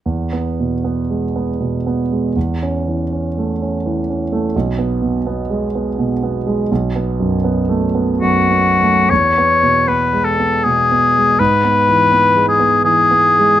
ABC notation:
X:1
M:3/4
L:1/8
Q:1/4=80
K:E
V:1 name="Oboe"
z6 | z6 | z6 | z4 F2 |
c2 B A G2 | B3 G G2 |]
V:2 name="Grand piano"
(3E,, B, B,, (3B, G, B, (3B,, B, G, | (3E,, C E, (3C A, C (3E, C A, | (3B,,, B, B,, (3B, G, B, (3B,, B, G, | (3B,,, B, F,, (3B, A, B, (3F,, B, A, |
(3E,, B, B,, (3B, G, B, (3B,, B, G, | (3G,, B, E, (3B, G, B, (3E, B, G, |]